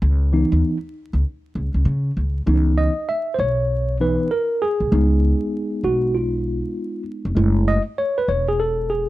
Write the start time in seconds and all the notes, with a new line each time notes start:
0.02 C#2
0.33 E3 B3 D#4
0.52 D#2
1.13 C#2
1.55 C#2
1.74 C#2
1.85 C#3
2.17 C#2
2.47 C#2 E3 B3 D#4
2.78 D#5
3.09 E5
3.34 C5
3.39 B1 C#5
4.00 E3 B3 D#4 B4
4.31 A#4
4.62 G#4
4.80 C2
4.92 C#2 G#3 B3 D#4
5.83 B1 F#4
6.15 F4
7.25 F1
7.35 F#1 G#3 A3 E4
7.68 D#5
7.98 C#5
8.18 B4
8.28 E1 C#5
8.48 G#4
8.60 A4
8.90 G#4